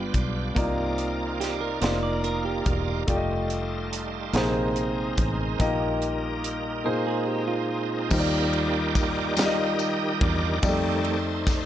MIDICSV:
0, 0, Header, 1, 6, 480
1, 0, Start_track
1, 0, Key_signature, -3, "major"
1, 0, Tempo, 839161
1, 322, Time_signature, 6, 3, 24, 8
1, 6667, End_track
2, 0, Start_track
2, 0, Title_t, "Clean electric guitar"
2, 0, Program_c, 0, 27
2, 803, Note_on_c, 0, 67, 57
2, 917, Note_off_c, 0, 67, 0
2, 919, Note_on_c, 0, 70, 63
2, 1034, Note_off_c, 0, 70, 0
2, 1045, Note_on_c, 0, 72, 66
2, 1158, Note_off_c, 0, 72, 0
2, 1160, Note_on_c, 0, 74, 63
2, 1275, Note_off_c, 0, 74, 0
2, 1283, Note_on_c, 0, 70, 58
2, 1397, Note_off_c, 0, 70, 0
2, 1401, Note_on_c, 0, 67, 61
2, 1744, Note_off_c, 0, 67, 0
2, 3922, Note_on_c, 0, 70, 56
2, 4036, Note_off_c, 0, 70, 0
2, 4043, Note_on_c, 0, 68, 61
2, 4157, Note_off_c, 0, 68, 0
2, 4157, Note_on_c, 0, 67, 61
2, 4273, Note_off_c, 0, 67, 0
2, 4276, Note_on_c, 0, 65, 58
2, 4621, Note_off_c, 0, 65, 0
2, 6667, End_track
3, 0, Start_track
3, 0, Title_t, "Tonewheel organ"
3, 0, Program_c, 1, 16
3, 0, Note_on_c, 1, 59, 57
3, 0, Note_on_c, 1, 65, 51
3, 0, Note_on_c, 1, 67, 49
3, 0, Note_on_c, 1, 74, 65
3, 305, Note_off_c, 1, 65, 0
3, 306, Note_off_c, 1, 74, 0
3, 312, Note_on_c, 1, 63, 57
3, 312, Note_on_c, 1, 65, 59
3, 313, Note_on_c, 1, 58, 64
3, 313, Note_on_c, 1, 74, 72
3, 324, Note_off_c, 1, 59, 0
3, 324, Note_off_c, 1, 67, 0
3, 1735, Note_off_c, 1, 58, 0
3, 1735, Note_off_c, 1, 63, 0
3, 1735, Note_off_c, 1, 65, 0
3, 1735, Note_off_c, 1, 74, 0
3, 1762, Note_on_c, 1, 69, 68
3, 1763, Note_on_c, 1, 63, 62
3, 1764, Note_on_c, 1, 55, 64
3, 1766, Note_on_c, 1, 65, 56
3, 2478, Note_off_c, 1, 63, 0
3, 2481, Note_on_c, 1, 68, 52
3, 2482, Note_on_c, 1, 56, 62
3, 2483, Note_off_c, 1, 55, 0
3, 2483, Note_off_c, 1, 69, 0
3, 2484, Note_off_c, 1, 65, 0
3, 2485, Note_on_c, 1, 63, 54
3, 2486, Note_on_c, 1, 60, 58
3, 2519, Note_off_c, 1, 68, 0
3, 2522, Note_on_c, 1, 70, 67
3, 3200, Note_off_c, 1, 63, 0
3, 3202, Note_off_c, 1, 56, 0
3, 3202, Note_off_c, 1, 70, 0
3, 3204, Note_off_c, 1, 60, 0
3, 3205, Note_on_c, 1, 55, 66
3, 3207, Note_on_c, 1, 63, 61
3, 3208, Note_on_c, 1, 58, 59
3, 3208, Note_on_c, 1, 70, 72
3, 3912, Note_off_c, 1, 63, 0
3, 3915, Note_off_c, 1, 70, 0
3, 3919, Note_on_c, 1, 60, 52
3, 3919, Note_on_c, 1, 63, 53
3, 3920, Note_on_c, 1, 56, 57
3, 3922, Note_on_c, 1, 70, 61
3, 3923, Note_off_c, 1, 55, 0
3, 3925, Note_off_c, 1, 58, 0
3, 4640, Note_off_c, 1, 60, 0
3, 4640, Note_off_c, 1, 63, 0
3, 4640, Note_off_c, 1, 70, 0
3, 4641, Note_off_c, 1, 56, 0
3, 4644, Note_on_c, 1, 51, 55
3, 4646, Note_on_c, 1, 55, 49
3, 4647, Note_on_c, 1, 70, 95
3, 4649, Note_on_c, 1, 67, 66
3, 4650, Note_on_c, 1, 58, 70
3, 4652, Note_on_c, 1, 63, 62
3, 4870, Note_off_c, 1, 67, 0
3, 4874, Note_on_c, 1, 74, 94
3, 4877, Note_on_c, 1, 67, 66
3, 4878, Note_on_c, 1, 65, 68
3, 4891, Note_off_c, 1, 70, 0
3, 5342, Note_off_c, 1, 58, 0
3, 5357, Note_off_c, 1, 67, 0
3, 5360, Note_on_c, 1, 75, 95
3, 5363, Note_on_c, 1, 67, 69
3, 5364, Note_on_c, 1, 70, 71
3, 5372, Note_off_c, 1, 74, 0
3, 5576, Note_off_c, 1, 65, 0
3, 5837, Note_off_c, 1, 55, 0
3, 5840, Note_on_c, 1, 65, 47
3, 5844, Note_on_c, 1, 55, 44
3, 5846, Note_on_c, 1, 74, 93
3, 5849, Note_on_c, 1, 62, 56
3, 5854, Note_off_c, 1, 75, 0
3, 6033, Note_off_c, 1, 74, 0
3, 6040, Note_on_c, 1, 74, 67
3, 6057, Note_off_c, 1, 65, 0
3, 6058, Note_off_c, 1, 51, 0
3, 6058, Note_off_c, 1, 67, 0
3, 6059, Note_off_c, 1, 55, 0
3, 6059, Note_off_c, 1, 70, 0
3, 6061, Note_off_c, 1, 62, 0
3, 6062, Note_off_c, 1, 63, 0
3, 6076, Note_on_c, 1, 51, 57
3, 6078, Note_off_c, 1, 74, 0
3, 6081, Note_on_c, 1, 55, 55
3, 6081, Note_on_c, 1, 63, 67
3, 6083, Note_on_c, 1, 72, 93
3, 6084, Note_on_c, 1, 57, 56
3, 6084, Note_on_c, 1, 74, 65
3, 6086, Note_on_c, 1, 69, 66
3, 6397, Note_off_c, 1, 51, 0
3, 6399, Note_off_c, 1, 55, 0
3, 6400, Note_off_c, 1, 57, 0
3, 6401, Note_off_c, 1, 74, 0
3, 6667, Note_off_c, 1, 63, 0
3, 6667, Note_off_c, 1, 69, 0
3, 6667, Note_off_c, 1, 72, 0
3, 6667, End_track
4, 0, Start_track
4, 0, Title_t, "Grand piano"
4, 0, Program_c, 2, 0
4, 0, Control_c, 2, 64, 127
4, 0, Note_on_c, 2, 43, 57
4, 0, Note_on_c, 2, 59, 58
4, 0, Note_on_c, 2, 65, 57
4, 0, Note_on_c, 2, 67, 54
4, 0, Note_on_c, 2, 74, 66
4, 248, Note_off_c, 2, 65, 0
4, 251, Note_off_c, 2, 67, 0
4, 253, Note_off_c, 2, 74, 0
4, 266, Note_off_c, 2, 59, 0
4, 298, Note_off_c, 2, 43, 0
4, 313, Note_on_c, 2, 58, 70
4, 318, Note_on_c, 2, 63, 63
4, 320, Note_on_c, 2, 48, 56
4, 324, Note_on_c, 2, 65, 66
4, 327, Note_on_c, 2, 74, 79
4, 329, Control_c, 2, 64, 0
4, 423, Control_c, 2, 64, 127
4, 966, Note_off_c, 2, 58, 0
4, 969, Note_off_c, 2, 63, 0
4, 971, Note_off_c, 2, 65, 0
4, 973, Note_off_c, 2, 74, 0
4, 1019, Note_off_c, 2, 48, 0
4, 1035, Note_on_c, 2, 58, 58
4, 1038, Note_on_c, 2, 63, 57
4, 1042, Note_on_c, 2, 65, 57
4, 1047, Note_on_c, 2, 74, 66
4, 1687, Note_off_c, 2, 58, 0
4, 1689, Note_off_c, 2, 63, 0
4, 1690, Note_off_c, 2, 65, 0
4, 1693, Note_off_c, 2, 74, 0
4, 1756, Note_on_c, 2, 57, 70
4, 1761, Note_on_c, 2, 65, 69
4, 1765, Note_on_c, 2, 67, 67
4, 1769, Note_on_c, 2, 74, 66
4, 1770, Control_c, 2, 64, 0
4, 1803, Note_off_c, 2, 74, 0
4, 1808, Note_on_c, 2, 75, 76
4, 1864, Control_c, 2, 64, 127
4, 2407, Note_off_c, 2, 57, 0
4, 2410, Note_off_c, 2, 65, 0
4, 2412, Note_off_c, 2, 67, 0
4, 2433, Note_off_c, 2, 75, 0
4, 2478, Note_on_c, 2, 58, 63
4, 2480, Note_on_c, 2, 63, 58
4, 2483, Note_on_c, 2, 48, 58
4, 2486, Note_on_c, 2, 68, 58
4, 2490, Note_on_c, 2, 72, 70
4, 2491, Control_c, 2, 64, 0
4, 2605, Control_c, 2, 64, 127
4, 3128, Note_off_c, 2, 58, 0
4, 3129, Note_off_c, 2, 63, 0
4, 3132, Note_off_c, 2, 68, 0
4, 3135, Note_off_c, 2, 72, 0
4, 3180, Note_off_c, 2, 48, 0
4, 3197, Note_on_c, 2, 58, 73
4, 3200, Note_on_c, 2, 63, 66
4, 3203, Note_on_c, 2, 46, 58
4, 3206, Note_on_c, 2, 67, 67
4, 3209, Note_on_c, 2, 75, 86
4, 3211, Control_c, 2, 64, 0
4, 3317, Control_c, 2, 64, 127
4, 3848, Note_off_c, 2, 58, 0
4, 3849, Note_off_c, 2, 63, 0
4, 3852, Note_off_c, 2, 67, 0
4, 3854, Note_off_c, 2, 75, 0
4, 3899, Note_off_c, 2, 46, 0
4, 3912, Note_on_c, 2, 58, 60
4, 3915, Note_on_c, 2, 63, 60
4, 3919, Note_on_c, 2, 46, 56
4, 3922, Note_on_c, 2, 68, 59
4, 3925, Note_on_c, 2, 72, 66
4, 3930, Control_c, 2, 64, 0
4, 4026, Control_c, 2, 64, 127
4, 4565, Note_off_c, 2, 58, 0
4, 4566, Note_off_c, 2, 63, 0
4, 4570, Note_off_c, 2, 68, 0
4, 4571, Note_off_c, 2, 72, 0
4, 4617, Note_off_c, 2, 46, 0
4, 4635, Note_on_c, 2, 55, 73
4, 4640, Note_on_c, 2, 63, 70
4, 4643, Note_on_c, 2, 65, 63
4, 4644, Note_on_c, 2, 51, 60
4, 4647, Note_on_c, 2, 72, 64
4, 4648, Control_c, 2, 64, 0
4, 4682, Note_off_c, 2, 72, 0
4, 4685, Note_on_c, 2, 74, 82
4, 4735, Control_c, 2, 64, 127
4, 5286, Note_off_c, 2, 55, 0
4, 5288, Note_off_c, 2, 63, 0
4, 5290, Note_off_c, 2, 65, 0
4, 5311, Note_off_c, 2, 74, 0
4, 5339, Note_off_c, 2, 51, 0
4, 5358, Note_on_c, 2, 55, 67
4, 5363, Note_on_c, 2, 63, 60
4, 5366, Note_on_c, 2, 65, 55
4, 5370, Note_on_c, 2, 74, 58
4, 5403, Note_off_c, 2, 74, 0
4, 5407, Note_on_c, 2, 75, 73
4, 6006, Note_off_c, 2, 55, 0
4, 6009, Note_off_c, 2, 63, 0
4, 6010, Note_off_c, 2, 65, 0
4, 6031, Note_off_c, 2, 75, 0
4, 6076, Note_on_c, 2, 55, 65
4, 6080, Note_on_c, 2, 63, 69
4, 6084, Note_on_c, 2, 67, 71
4, 6086, Note_on_c, 2, 74, 85
4, 6087, Control_c, 2, 64, 0
4, 6111, Note_on_c, 2, 57, 71
4, 6115, Note_off_c, 2, 55, 0
4, 6197, Control_c, 2, 64, 127
4, 6667, Note_off_c, 2, 57, 0
4, 6667, Note_off_c, 2, 63, 0
4, 6667, Note_off_c, 2, 67, 0
4, 6667, Note_off_c, 2, 74, 0
4, 6667, End_track
5, 0, Start_track
5, 0, Title_t, "Fingered electric bass"
5, 0, Program_c, 3, 33
5, 0, Note_on_c, 3, 31, 74
5, 59, Note_off_c, 3, 31, 0
5, 79, Note_on_c, 3, 35, 62
5, 301, Note_off_c, 3, 35, 0
5, 321, Note_on_c, 3, 36, 79
5, 1019, Note_off_c, 3, 36, 0
5, 1040, Note_on_c, 3, 29, 73
5, 1499, Note_off_c, 3, 29, 0
5, 1521, Note_on_c, 3, 28, 67
5, 1743, Note_off_c, 3, 28, 0
5, 1762, Note_on_c, 3, 29, 83
5, 2459, Note_off_c, 3, 29, 0
5, 2478, Note_on_c, 3, 34, 83
5, 2938, Note_off_c, 3, 34, 0
5, 2960, Note_on_c, 3, 33, 66
5, 3182, Note_off_c, 3, 33, 0
5, 3202, Note_on_c, 3, 34, 83
5, 3899, Note_off_c, 3, 34, 0
5, 4639, Note_on_c, 3, 39, 98
5, 5816, Note_off_c, 3, 39, 0
5, 5842, Note_on_c, 3, 40, 80
5, 6061, Note_off_c, 3, 40, 0
5, 6081, Note_on_c, 3, 41, 100
5, 6667, Note_off_c, 3, 41, 0
5, 6667, End_track
6, 0, Start_track
6, 0, Title_t, "Drums"
6, 80, Note_on_c, 9, 42, 55
6, 81, Note_on_c, 9, 36, 79
6, 137, Note_off_c, 9, 42, 0
6, 139, Note_off_c, 9, 36, 0
6, 322, Note_on_c, 9, 36, 86
6, 323, Note_on_c, 9, 42, 79
6, 380, Note_off_c, 9, 36, 0
6, 380, Note_off_c, 9, 42, 0
6, 561, Note_on_c, 9, 42, 39
6, 619, Note_off_c, 9, 42, 0
6, 808, Note_on_c, 9, 42, 64
6, 815, Note_on_c, 9, 38, 34
6, 865, Note_off_c, 9, 42, 0
6, 872, Note_off_c, 9, 38, 0
6, 1039, Note_on_c, 9, 42, 59
6, 1053, Note_on_c, 9, 38, 85
6, 1096, Note_off_c, 9, 42, 0
6, 1110, Note_off_c, 9, 38, 0
6, 1281, Note_on_c, 9, 42, 37
6, 1338, Note_off_c, 9, 42, 0
6, 1521, Note_on_c, 9, 42, 59
6, 1522, Note_on_c, 9, 36, 74
6, 1578, Note_off_c, 9, 42, 0
6, 1580, Note_off_c, 9, 36, 0
6, 1761, Note_on_c, 9, 42, 74
6, 1762, Note_on_c, 9, 36, 91
6, 1818, Note_off_c, 9, 42, 0
6, 1820, Note_off_c, 9, 36, 0
6, 2002, Note_on_c, 9, 42, 41
6, 2059, Note_off_c, 9, 42, 0
6, 2247, Note_on_c, 9, 42, 63
6, 2304, Note_off_c, 9, 42, 0
6, 2480, Note_on_c, 9, 42, 67
6, 2493, Note_on_c, 9, 38, 84
6, 2537, Note_off_c, 9, 42, 0
6, 2550, Note_off_c, 9, 38, 0
6, 2722, Note_on_c, 9, 42, 38
6, 2780, Note_off_c, 9, 42, 0
6, 2961, Note_on_c, 9, 42, 56
6, 2963, Note_on_c, 9, 36, 80
6, 3018, Note_off_c, 9, 42, 0
6, 3020, Note_off_c, 9, 36, 0
6, 3202, Note_on_c, 9, 36, 101
6, 3203, Note_on_c, 9, 42, 80
6, 3259, Note_off_c, 9, 36, 0
6, 3260, Note_off_c, 9, 42, 0
6, 3443, Note_on_c, 9, 42, 39
6, 3500, Note_off_c, 9, 42, 0
6, 3685, Note_on_c, 9, 42, 62
6, 3742, Note_off_c, 9, 42, 0
6, 4636, Note_on_c, 9, 54, 56
6, 4639, Note_on_c, 9, 49, 92
6, 4640, Note_on_c, 9, 36, 108
6, 4693, Note_off_c, 9, 54, 0
6, 4696, Note_off_c, 9, 49, 0
6, 4697, Note_off_c, 9, 36, 0
6, 4881, Note_on_c, 9, 51, 37
6, 4938, Note_off_c, 9, 51, 0
6, 5121, Note_on_c, 9, 36, 91
6, 5122, Note_on_c, 9, 54, 48
6, 5127, Note_on_c, 9, 51, 58
6, 5178, Note_off_c, 9, 36, 0
6, 5179, Note_off_c, 9, 54, 0
6, 5184, Note_off_c, 9, 51, 0
6, 5357, Note_on_c, 9, 54, 95
6, 5359, Note_on_c, 9, 51, 58
6, 5372, Note_on_c, 9, 38, 96
6, 5415, Note_off_c, 9, 54, 0
6, 5416, Note_off_c, 9, 51, 0
6, 5430, Note_off_c, 9, 38, 0
6, 5600, Note_on_c, 9, 54, 54
6, 5601, Note_on_c, 9, 51, 36
6, 5657, Note_off_c, 9, 54, 0
6, 5659, Note_off_c, 9, 51, 0
6, 5841, Note_on_c, 9, 36, 98
6, 5842, Note_on_c, 9, 51, 55
6, 5898, Note_off_c, 9, 36, 0
6, 5899, Note_off_c, 9, 51, 0
6, 6079, Note_on_c, 9, 51, 82
6, 6079, Note_on_c, 9, 54, 59
6, 6080, Note_on_c, 9, 36, 111
6, 6136, Note_off_c, 9, 51, 0
6, 6136, Note_off_c, 9, 54, 0
6, 6138, Note_off_c, 9, 36, 0
6, 6318, Note_on_c, 9, 51, 39
6, 6375, Note_off_c, 9, 51, 0
6, 6560, Note_on_c, 9, 36, 88
6, 6562, Note_on_c, 9, 54, 49
6, 6563, Note_on_c, 9, 51, 58
6, 6570, Note_on_c, 9, 38, 40
6, 6617, Note_off_c, 9, 36, 0
6, 6619, Note_off_c, 9, 54, 0
6, 6620, Note_off_c, 9, 51, 0
6, 6627, Note_off_c, 9, 38, 0
6, 6667, End_track
0, 0, End_of_file